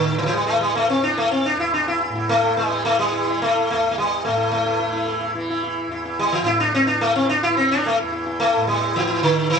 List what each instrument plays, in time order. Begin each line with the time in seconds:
Already playing: tanpura E2 A2 E3, sitar D3
0.18 sitar D3 E3
0.26 sitar E3
0.33 sitar G3
0.46 tanpura E3, sitar A3
0.61 sitar G3
0.75 sitar A3
0.90 sitar C4
1.02 tanpura E3, sitar D4
1.18 sitar A3
1.31 sitar C4
1.46 sitar D4
1.56 tanpura E2, sitar E4
1.74 sitar D4
1.88 sitar E4
2.01 sitar E4
2.10 tanpura A2
2.15 sitar E4
2.29 sitar A3
2.43 sitar E4
2.57 sitar G3
2.65 tanpura E3
2.71 sitar E4
2.85 sitar A3
2.99 sitar G3
3.12 sitar E4
3.17 tanpura E3
3.27 sitar E4
3.42 sitar A3
3.55 sitar E4
3.70 tanpura E2, sitar A3
3.91 sitar A3
3.98 sitar G3
4.25 tanpura A2, sitar A3
4.37 sitar E4
4.51 sitar A3
4.66 sitar E4
4.79 tanpura E3, sitar E4
4.92 sitar E4
5.07 sitar E4
5.21 sitar E4
5.34 tanpura E3, sitar E4
5.50 sitar E4
5.63 sitar E4
5.88 tanpura E2, sitar E4
6.05 sitar E4
6.19 sitar G3
6.32 sitar E3
6.42 tanpura A2
6.46 sitar E4
6.60 sitar D4
6.75 sitar C4
6.87 sitar D4
6.95 tanpura E3
7.01 sitar A3
7.16 sitar C4
7.25 sitar E4
7.29 sitar D4
7.43 sitar E4
7.48 tanpura E3
7.57 sitar C4
7.71 sitar D4
7.86 sitar A3
7.99 tanpura E2, sitar E4
8.12 sitar E4
8.26 sitar E4
8.40 sitar A3
8.53 tanpura A2, sitar E4
8.67 sitar G3
8.81 sitar E4
8.96 sitar E3
9.09 tanpura E3, sitar E4
9.23 sitar D3
9.50 sitar E3